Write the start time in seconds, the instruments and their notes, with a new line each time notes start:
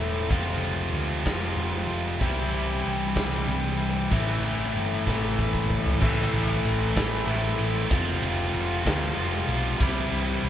Already playing: picked electric bass E1, distorted electric guitar A2 E3 A3 C4 E4, overdriven electric guitar A2 E3 A3
0.28 picked electric bass F1, overdriven electric guitar F2 C3 F3, distorted electric guitar F3 G#3 C4 F4, kick, closed hi-hat
0.63 closed hi-hat
0.93 picked electric bass D2, closed hi-hat
1.24 picked electric bass F1, overdriven electric guitar F2 C3 F3, kick, snare, closed hi-hat
1.57 picked electric bass F1, closed hi-hat
1.87 picked electric bass F1, closed hi-hat
2.19 picked electric bass C2, distorted electric guitar C3 E3 G3 C4 E4, overdriven electric guitar C3 G3 C4, kick, closed hi-hat
2.53 closed hi-hat
2.84 picked electric bass C2, closed hi-hat
3.16 picked electric bass C2, overdriven electric guitar C3 G3 C4, kick, snare, closed hi-hat
3.47 picked electric bass C2, closed hi-hat
3.79 closed hi-hat
4.10 picked electric bass A1, distorted electric guitar A2 E3 A3 C4 E4, overdriven electric guitar A2 E3 A3, kick, closed hi-hat
4.43 closed hi-hat
4.75 picked electric bass G1, closed hi-hat
5.06 picked electric bass A1, overdriven electric guitar A2 E3 A3, kick, snare
5.39 picked electric bass A1, kick
5.55 kick
5.70 picked electric bass A1, kick
5.86 floor tom
6.00 picked electric bass A1, overdriven electric guitar A2 E3 A3, distorted electric guitar A2 E3 A3 C4 E4, kick, crash
6.32 picked electric bass A1, ride
6.65 picked electric bass A1, ride
6.95 picked electric bass A1, overdriven electric guitar A2 E3 A3, kick, snare, ride
7.26 picked electric bass A1, distorted electric guitar A2 E3 A3 C4 E4, ride
7.59 picked electric bass A1, ride
7.89 picked electric bass F1, overdriven electric guitar F2 C3 F3, distorted electric guitar F3 G#3 C4 F4, kick, ride
8.23 picked electric bass F1, ride
8.54 picked electric bass F1, ride
8.83 picked electric bass D2, overdriven electric guitar F2 C3 F3, kick, snare, ride
9.16 picked electric bass F1, distorted electric guitar F3 G#3 C4 F4, ride
9.47 picked electric bass B1, ride
9.78 picked electric bass C2, overdriven electric guitar C3 G3 C4, distorted electric guitar C3 E3 G3 C4 E4, kick, ride
10.11 picked electric bass C2, ride
10.43 picked electric bass C2, ride